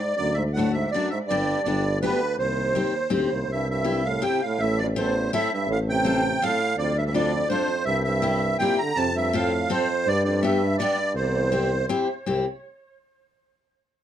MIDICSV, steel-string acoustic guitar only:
0, 0, Header, 1, 2, 480
1, 0, Start_track
1, 0, Key_signature, -3, "minor"
1, 0, Tempo, 366300
1, 250, Time_signature, 3, 2, 24, 8
1, 4582, Key_signature, 0, "major"
1, 18393, End_track
2, 0, Start_track
2, 0, Title_t, "Steel-string acoustic guitar"
2, 0, Program_c, 0, 25
2, 749, Note_on_c, 0, 57, 51
2, 765, Note_on_c, 0, 62, 49
2, 775, Note_on_c, 0, 66, 63
2, 958, Note_off_c, 0, 57, 0
2, 966, Note_off_c, 0, 62, 0
2, 971, Note_off_c, 0, 66, 0
2, 1236, Note_on_c, 0, 57, 55
2, 1252, Note_on_c, 0, 62, 54
2, 1260, Note_on_c, 0, 66, 67
2, 1441, Note_off_c, 0, 57, 0
2, 1449, Note_off_c, 0, 62, 0
2, 1453, Note_off_c, 0, 66, 0
2, 1709, Note_on_c, 0, 60, 65
2, 1718, Note_on_c, 0, 62, 53
2, 1724, Note_on_c, 0, 67, 90
2, 2082, Note_off_c, 0, 60, 0
2, 2082, Note_off_c, 0, 62, 0
2, 2088, Note_off_c, 0, 67, 0
2, 2179, Note_on_c, 0, 59, 56
2, 2188, Note_on_c, 0, 62, 55
2, 2196, Note_on_c, 0, 67, 52
2, 2389, Note_off_c, 0, 59, 0
2, 2394, Note_off_c, 0, 62, 0
2, 2394, Note_off_c, 0, 67, 0
2, 2654, Note_on_c, 0, 59, 52
2, 2666, Note_on_c, 0, 62, 48
2, 2675, Note_on_c, 0, 67, 62
2, 2866, Note_off_c, 0, 59, 0
2, 2867, Note_off_c, 0, 62, 0
2, 2875, Note_off_c, 0, 67, 0
2, 3603, Note_on_c, 0, 60, 54
2, 3611, Note_on_c, 0, 63, 44
2, 3618, Note_on_c, 0, 67, 58
2, 3822, Note_off_c, 0, 60, 0
2, 3826, Note_off_c, 0, 63, 0
2, 3828, Note_off_c, 0, 67, 0
2, 4063, Note_on_c, 0, 60, 67
2, 4070, Note_on_c, 0, 63, 52
2, 4075, Note_on_c, 0, 67, 66
2, 4304, Note_off_c, 0, 60, 0
2, 4304, Note_off_c, 0, 63, 0
2, 4309, Note_off_c, 0, 67, 0
2, 5038, Note_on_c, 0, 60, 57
2, 5043, Note_on_c, 0, 64, 51
2, 5048, Note_on_c, 0, 67, 50
2, 5271, Note_off_c, 0, 60, 0
2, 5273, Note_off_c, 0, 67, 0
2, 5275, Note_off_c, 0, 64, 0
2, 5527, Note_on_c, 0, 60, 60
2, 5533, Note_on_c, 0, 64, 49
2, 5537, Note_on_c, 0, 67, 64
2, 5758, Note_off_c, 0, 60, 0
2, 5758, Note_off_c, 0, 64, 0
2, 5762, Note_off_c, 0, 67, 0
2, 6501, Note_on_c, 0, 60, 71
2, 6520, Note_on_c, 0, 64, 53
2, 6524, Note_on_c, 0, 69, 62
2, 6719, Note_off_c, 0, 60, 0
2, 6728, Note_off_c, 0, 69, 0
2, 6729, Note_off_c, 0, 64, 0
2, 6986, Note_on_c, 0, 60, 73
2, 6995, Note_on_c, 0, 64, 73
2, 6997, Note_on_c, 0, 69, 67
2, 7200, Note_off_c, 0, 60, 0
2, 7202, Note_off_c, 0, 69, 0
2, 7205, Note_off_c, 0, 64, 0
2, 7923, Note_on_c, 0, 60, 69
2, 7931, Note_on_c, 0, 65, 55
2, 7942, Note_on_c, 0, 69, 83
2, 8141, Note_off_c, 0, 60, 0
2, 8145, Note_off_c, 0, 65, 0
2, 8151, Note_off_c, 0, 69, 0
2, 8416, Note_on_c, 0, 60, 71
2, 8427, Note_on_c, 0, 65, 47
2, 8432, Note_on_c, 0, 69, 86
2, 8630, Note_off_c, 0, 60, 0
2, 8632, Note_off_c, 0, 65, 0
2, 8637, Note_off_c, 0, 69, 0
2, 9360, Note_on_c, 0, 62, 54
2, 9366, Note_on_c, 0, 65, 54
2, 9377, Note_on_c, 0, 69, 64
2, 9576, Note_off_c, 0, 62, 0
2, 9579, Note_off_c, 0, 65, 0
2, 9585, Note_off_c, 0, 69, 0
2, 9825, Note_on_c, 0, 62, 64
2, 9844, Note_on_c, 0, 65, 44
2, 9851, Note_on_c, 0, 69, 54
2, 10052, Note_off_c, 0, 62, 0
2, 10061, Note_off_c, 0, 69, 0
2, 10063, Note_off_c, 0, 65, 0
2, 10772, Note_on_c, 0, 60, 61
2, 10783, Note_on_c, 0, 64, 49
2, 10789, Note_on_c, 0, 67, 71
2, 11013, Note_off_c, 0, 60, 0
2, 11018, Note_off_c, 0, 64, 0
2, 11021, Note_off_c, 0, 67, 0
2, 11268, Note_on_c, 0, 60, 56
2, 11276, Note_on_c, 0, 64, 51
2, 11294, Note_on_c, 0, 67, 70
2, 11499, Note_off_c, 0, 60, 0
2, 11503, Note_off_c, 0, 64, 0
2, 11512, Note_off_c, 0, 67, 0
2, 12230, Note_on_c, 0, 60, 65
2, 12243, Note_on_c, 0, 65, 64
2, 12254, Note_on_c, 0, 69, 66
2, 12455, Note_off_c, 0, 60, 0
2, 12462, Note_off_c, 0, 65, 0
2, 12465, Note_off_c, 0, 69, 0
2, 12705, Note_on_c, 0, 65, 58
2, 12710, Note_on_c, 0, 60, 67
2, 12720, Note_on_c, 0, 69, 66
2, 12930, Note_off_c, 0, 65, 0
2, 12933, Note_off_c, 0, 60, 0
2, 12938, Note_off_c, 0, 69, 0
2, 13663, Note_on_c, 0, 59, 59
2, 13683, Note_on_c, 0, 62, 58
2, 13687, Note_on_c, 0, 67, 64
2, 13881, Note_off_c, 0, 59, 0
2, 13892, Note_off_c, 0, 62, 0
2, 13892, Note_off_c, 0, 67, 0
2, 14150, Note_on_c, 0, 59, 77
2, 14160, Note_on_c, 0, 62, 51
2, 14173, Note_on_c, 0, 67, 83
2, 14362, Note_off_c, 0, 59, 0
2, 14367, Note_off_c, 0, 62, 0
2, 14373, Note_off_c, 0, 67, 0
2, 15092, Note_on_c, 0, 60, 57
2, 15101, Note_on_c, 0, 64, 60
2, 15113, Note_on_c, 0, 67, 52
2, 15316, Note_off_c, 0, 60, 0
2, 15322, Note_off_c, 0, 64, 0
2, 15323, Note_off_c, 0, 67, 0
2, 15585, Note_on_c, 0, 60, 65
2, 15593, Note_on_c, 0, 64, 65
2, 15595, Note_on_c, 0, 67, 79
2, 15813, Note_off_c, 0, 60, 0
2, 15814, Note_off_c, 0, 64, 0
2, 15818, Note_off_c, 0, 67, 0
2, 16070, Note_on_c, 0, 60, 66
2, 16079, Note_on_c, 0, 64, 61
2, 16083, Note_on_c, 0, 67, 69
2, 16305, Note_off_c, 0, 60, 0
2, 16306, Note_off_c, 0, 67, 0
2, 16307, Note_off_c, 0, 64, 0
2, 18393, End_track
0, 0, End_of_file